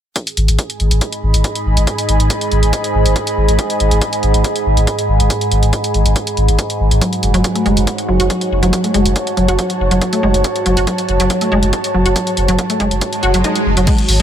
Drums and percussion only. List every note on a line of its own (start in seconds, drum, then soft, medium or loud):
0.16 kick loud
0.16 closed hi-hat medium
0.27 closed hi-hat medium
0.37 closed hi-hat medium
0.48 closed hi-hat medium
0.59 kick loud
0.59 closed hi-hat medium
0.70 closed hi-hat medium
0.80 closed hi-hat soft
0.91 closed hi-hat medium
1.01 kick loud
1.01 closed hi-hat medium
1.12 closed hi-hat medium
1.34 closed hi-hat medium
1.44 kick loud
1.44 closed hi-hat medium
1.55 closed hi-hat medium
1.77 closed hi-hat medium
1.87 kick loud
1.87 closed hi-hat medium
1.98 closed hi-hat medium
2.09 closed hi-hat medium
2.20 closed hi-hat medium
2.30 kick loud
2.30 closed hi-hat medium
2.41 closed hi-hat medium
2.52 closed hi-hat soft
2.63 closed hi-hat medium
2.73 kick loud
2.73 closed hi-hat medium
2.84 closed hi-hat medium
3.06 closed hi-hat medium
3.16 kick loud
3.16 closed hi-hat medium
3.27 closed hi-hat medium
3.48 closed hi-hat medium
3.59 kick loud
3.59 closed hi-hat medium
3.70 closed hi-hat medium
3.80 closed hi-hat medium
3.91 closed hi-hat medium
4.01 kick loud
4.01 closed hi-hat medium
4.13 closed hi-hat medium
4.23 closed hi-hat soft
4.34 closed hi-hat medium
4.44 kick loud
4.44 closed hi-hat medium
4.56 closed hi-hat medium
4.77 closed hi-hat medium
4.87 kick loud
4.87 closed hi-hat medium
4.99 closed hi-hat medium
5.20 closed hi-hat medium
5.30 kick loud
5.30 closed hi-hat medium
5.41 closed hi-hat medium
5.51 closed hi-hat medium
5.63 closed hi-hat soft
5.73 kick loud
5.73 closed hi-hat medium
5.84 closed hi-hat medium
5.94 closed hi-hat soft
6.06 closed hi-hat medium
6.16 kick loud
6.16 closed hi-hat medium
6.27 closed hi-hat medium
6.37 closed hi-hat soft
6.48 closed hi-hat medium
6.59 kick loud
6.59 closed hi-hat medium
6.70 closed hi-hat medium
6.91 closed hi-hat medium
7.01 kick loud
7.01 closed hi-hat medium
7.13 closed hi-hat soft
7.23 closed hi-hat medium
7.34 closed hi-hat soft
7.44 kick loud
7.44 closed hi-hat medium
7.55 closed hi-hat soft
7.66 closed hi-hat soft
7.77 closed hi-hat medium
7.87 kick loud
7.87 closed hi-hat medium
7.98 closed hi-hat soft
8.20 closed hi-hat soft
8.30 kick loud
8.30 closed hi-hat medium
8.41 closed hi-hat soft
8.63 closed hi-hat soft
8.73 kick loud
8.73 closed hi-hat medium
8.84 closed hi-hat soft
8.94 closed hi-hat medium
9.06 closed hi-hat soft
9.16 kick loud
9.16 closed hi-hat medium
9.27 closed hi-hat soft
9.37 closed hi-hat soft
9.48 closed hi-hat medium
9.59 kick loud
9.59 closed hi-hat medium
9.70 closed hi-hat soft
9.91 closed hi-hat medium
10.01 kick loud
10.01 closed hi-hat medium
10.13 closed hi-hat soft
10.34 closed hi-hat soft
10.44 kick loud
10.44 closed hi-hat medium
10.56 closed hi-hat soft
10.66 closed hi-hat medium
10.77 closed hi-hat soft
10.87 kick loud
10.87 closed hi-hat medium
10.98 closed hi-hat soft
11.09 closed hi-hat soft
11.20 closed hi-hat medium
11.30 kick loud
11.30 closed hi-hat medium
11.41 closed hi-hat medium
11.63 closed hi-hat medium
11.73 kick loud
11.73 closed hi-hat medium
11.84 closed hi-hat medium
12.06 closed hi-hat soft
12.16 kick loud
12.16 closed hi-hat medium
12.27 closed hi-hat medium
12.37 closed hi-hat medium
12.48 closed hi-hat medium
12.59 kick loud
12.59 closed hi-hat medium
12.70 closed hi-hat medium
12.80 kick medium
12.80 closed hi-hat soft
12.91 closed hi-hat medium
13.01 kick loud
13.01 closed hi-hat medium
13.13 closed hi-hat medium
13.23 closed hi-hat soft
13.34 closed hi-hat medium
13.44 kick loud
13.44 closed hi-hat medium
13.55 closed hi-hat medium
13.77 closed hi-hat medium
13.87 kick loud
13.87 closed hi-hat medium
13.87 crash medium
13.98 closed hi-hat medium
14.09 open hi-hat loud